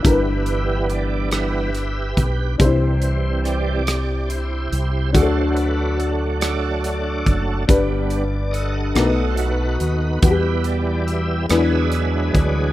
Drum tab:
HH |xxxxxx|xxxxxx|xxxxxx|xxxxxx|
SD |---rr-|--rr--|---rr-|---r--|
BD |o----o|o-----|o----o|o-----|

HH |xxxxxx|
SD |---rr-|
BD |o----o|